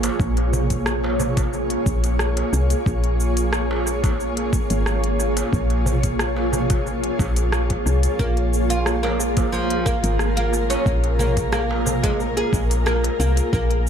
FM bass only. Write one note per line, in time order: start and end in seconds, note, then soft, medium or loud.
0.20 1.76 A#1 loud
1.86 2.43 A#1 medium
2.53 2.74 C2 medium
2.86 4.59 A#1 loud
4.71 5.43 G#1 loud
5.53 7.09 A#1 loud
7.19 7.76 A#1 medium
7.86 8.07 C2 medium
8.19 9.93 A#1 medium
10.04 10.76 G#1 medium
10.86 12.43 A#1 loud
12.53 13.09 A#1 medium
13.20 13.40 C2 medium
13.53 13.89 A#1 loud